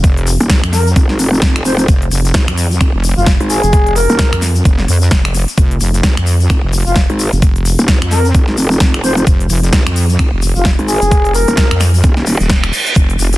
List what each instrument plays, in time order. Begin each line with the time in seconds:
Already playing: wobble bass F1
0.04 kick, closed hi-hat, shaker
0.17 closed hi-hat
0.27 open hi-hat, shaker
0.40 wobble bass D#1, closed hi-hat, shaker
0.50 wobble bass G#1, kick, snare, closed hi-hat
0.64 wobble bass F2, finger snap, closed hi-hat
0.73 muted trumpet A#4, snare, open hi-hat, shaker
0.87 closed hi-hat, shaker
0.96 wobble bass F1, kick, closed hi-hat, shaker
1.09 wobble bass G#1, snare
1.19 wobble bass F1, open hi-hat, shaker
1.34 shaker
1.42 wobble bass F1, kick, snare, closed hi-hat, shaker
1.56 finger snap, closed hi-hat
1.65 wobble bass F1, muted trumpet C5, open hi-hat, shaker
1.79 muted trumpet C5, closed hi-hat, shaker
1.88 wobble bass F1, kick, closed hi-hat, shaker
2.02 closed hi-hat
2.11 wobble bass F1, open hi-hat, shaker
2.25 closed hi-hat, shaker
2.34 wobble bass G#1, kick, snare, closed hi-hat, shaker
2.48 wobble bass F2, finger snap, closed hi-hat
2.58 open hi-hat, shaker
2.71 closed hi-hat, shaker
2.81 wobble bass F1, finger snap, kick, closed hi-hat
2.94 wobble bass F1
3.04 open hi-hat, shaker
3.17 wobble bass F1, muted trumpet F4, shaker
3.26 kick, snare, closed hi-hat
3.40 wobble bass G#1, closed hi-hat
3.50 muted trumpet G#4, open hi-hat, shaker
3.63 wobble bass F1, closed hi-hat, shaker
3.73 kick, closed hi-hat, shaker
3.87 closed hi-hat
3.96 muted trumpet A#4, open hi-hat, shaker
4.10 wobble bass D#1, closed hi-hat, shaker
4.19 wobble bass G#1, kick, snare, closed hi-hat, shaker
4.33 wobble bass F2, finger snap, closed hi-hat
4.42 snare, open hi-hat, shaker
4.55 closed hi-hat, shaker
4.65 wobble bass F1, kick, closed hi-hat, shaker
4.78 snare
4.88 wobble bass F2, open hi-hat, shaker
5.01 shaker
5.11 wobble bass F1, kick, snare, closed hi-hat, shaker
5.25 finger snap, closed hi-hat
5.34 open hi-hat, shaker
5.48 closed hi-hat, shaker
5.58 wobble bass F1, kick, closed hi-hat
5.71 closed hi-hat
5.81 wobble bass F1, open hi-hat, shaker
5.94 closed hi-hat, shaker
6.03 wobble bass G#1, kick, snare, closed hi-hat
6.17 wobble bass F2, finger snap, closed hi-hat
6.27 open hi-hat, shaker
6.40 closed hi-hat, shaker
6.50 wobble bass F1, finger snap, kick, closed hi-hat
6.63 wobble bass F1
6.73 open hi-hat, shaker
6.87 wobble bass F1, muted trumpet F4, shaker
6.96 kick, snare, closed hi-hat, shaker
7.10 wobble bass G#1, closed hi-hat
7.19 open hi-hat, shaker
7.33 wobble bass F1, closed hi-hat, shaker
7.42 kick, closed hi-hat, shaker
7.56 closed hi-hat
7.65 open hi-hat, shaker
7.78 wobble bass D#1, closed hi-hat, shaker
7.88 wobble bass G#1, kick, snare, closed hi-hat, shaker
8.02 wobble bass F2, finger snap, closed hi-hat
8.11 muted trumpet A#4, snare, open hi-hat, shaker
8.25 closed hi-hat, shaker
8.34 wobble bass F1, kick, closed hi-hat, shaker
8.48 wobble bass G#1, snare
8.57 wobble bass F1, open hi-hat, shaker
8.71 shaker
8.80 wobble bass F1, kick, snare, closed hi-hat, shaker
8.94 finger snap, closed hi-hat
9.04 wobble bass F1, muted trumpet C5, open hi-hat, shaker
9.17 muted trumpet C5, closed hi-hat, shaker
9.27 wobble bass F1, kick, closed hi-hat, shaker
9.40 closed hi-hat
9.50 wobble bass F1, open hi-hat, shaker
9.63 closed hi-hat, shaker
9.73 wobble bass G#1, kick, snare, closed hi-hat, shaker
9.87 wobble bass F2, finger snap, closed hi-hat
9.96 open hi-hat, shaker
10.10 closed hi-hat, shaker
10.19 wobble bass F1, finger snap, kick, closed hi-hat
10.33 wobble bass F1
10.42 open hi-hat, shaker
10.56 wobble bass F1, muted trumpet F4, shaker
10.65 kick, snare, closed hi-hat
10.79 wobble bass G#1, closed hi-hat
10.88 muted trumpet G#4, open hi-hat, shaker
11.02 wobble bass F1, closed hi-hat, shaker
11.11 kick, closed hi-hat, shaker
11.25 closed hi-hat
11.35 muted trumpet A#4, open hi-hat, shaker
11.48 wobble bass D#1, closed hi-hat, shaker
11.57 wobble bass G#1, kick, snare, closed hi-hat, shaker
11.71 wobble bass F2, finger snap, closed hi-hat
11.80 finger snap, snare, open hi-hat, shaker
11.94 open hi-hat, shaker
12.03 wobble bass D#1, kick, closed hi-hat, reverse cymbal, shaker
12.17 snare
12.27 open hi-hat, shaker
12.40 wobble bass D#1, closed hi-hat, shaker
12.50 kick, snare, closed hi-hat
12.64 finger snap, closed hi-hat
12.73 open hi-hat, shaker
12.86 closed hi-hat, shaker
12.96 wobble bass F1, kick, closed hi-hat, shaker
13.10 closed hi-hat
13.19 wobble bass F1, open hi-hat, shaker
13.33 closed hi-hat, shaker